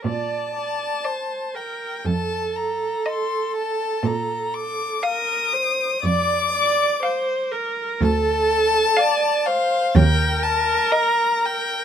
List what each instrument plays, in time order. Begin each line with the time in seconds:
0.04 cello A#2, viola D5, violin A5
0.56 viola D5
1.04 viola C5, violin D5
1.55 viola A#4, violin G5
2.05 cello F2, viola A4, violin A5
2.56 violin A#5
3.06 violin D#5 C6
3.56 violin A5
4.03 cello A#2, violin A#5
4.54 violin D6
5.03 viola A#4, violin F5 D#6
5.53 viola C5
6.03 cello F2, viola D5, violin D6
6.53 viola D5
7.03 viola C5, violin F5
7.52 viola A#4
8.01 cello D2, viola A4, violin A5
8.97 viola D5, violin F5
9.46 viola C5, violin F5
9.95 cello D#2, viola A#4, violin G5
10.43 violin A5
10.91 violin D#5 A#5
11.46 violin G5